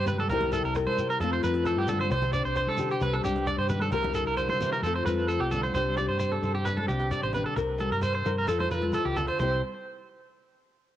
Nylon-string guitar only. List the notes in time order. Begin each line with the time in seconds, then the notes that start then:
Already playing: C3 G4 C5
0.07 G3
0.30 C3 G3 E4 G4 A#4
0.54 E4
0.77 A#4
1.00 G4
1.21 F3 A3 C4 F4, muted nylon-string guitar stroke
1.45 C4
1.66 E3
1.88 D3
2.10 C3 C5
2.33 D4
2.56 C5
2.79 G4
3.01 G3
3.24 D4
3.47 G4
3.69 G3
3.91 C3 G3 E4 G4 A#4
4.15 E4
4.38 D3
4.61 E3
4.84 F3 A3 C4 F4 A4
5.08 C4
5.53 D3
5.75 C3 G3 D4 G4 C5
5.98 G4
6.20 G3
6.43 C5
6.66 D4
6.89 C3
7.12 G4
7.36 D4
7.57 C3 A#4
7.81 G4
8.26 A#4
8.48 F3 A4
8.71 F4
8.94 E3
9.16 D3
9.40 C3 G3 E4 G4 C5